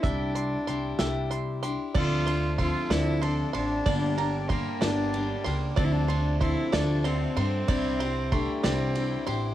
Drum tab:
CC |------|x-----|------|------|
RD |------|-xxxxx|xxxxxx|xxxxxx|
HH |xxxxxx|------|------|------|
SD |---o--|---o--|---o--|---o--|
BD |o-----|o-o---|o-o---|o-o---|

CC |------|
RD |xxxxxx|
HH |------|
SD |---o--|
BD |o-o---|